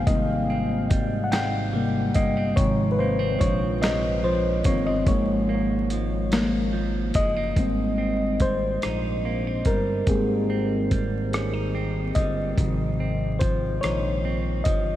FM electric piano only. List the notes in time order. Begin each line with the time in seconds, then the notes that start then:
Already playing: C3 G3 A#3 F5 G5
0.07 C3 G3 A#3 D#5
1.24 F#5
1.32 G5
1.75 C3 G3 A#3
2.15 D#5
2.56 C3 D#3 F3 C#5
2.92 B4
2.99 C5
3.40 C#5
3.82 D#5
4.24 C5
4.66 D#3 F3 C4 C#5
4.86 D#5
5.08 F3 G#3 A#3 C#5
6.33 F3 G#3 A#3
7.15 D#5
7.57 G3 A#3 C4
8.42 C5
9.67 A#4
10.08 A#3 C4 G4 G#4
12.15 D#5
12.58 C3 D#3 F3
13.39 C5
13.81 D#3 F3 C5 C#5
14.64 D#5